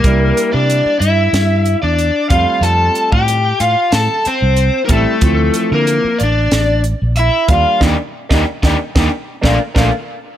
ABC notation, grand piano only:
X:1
M:4/4
L:1/16
Q:1/4=92
K:F
V:1 name="Grand piano"
[G,B,DE]6 z8 [G,A,CF]2- | [G,A,CF]4 z8 z2 [G,A,CE]2 | [E,F,CE]6 z8 [G,B,DF]2 | [B,D_E] z2 [B,DE] z [B,DE] z [B,DE] z2 [A,B,D] z [A,B,D] z3 |]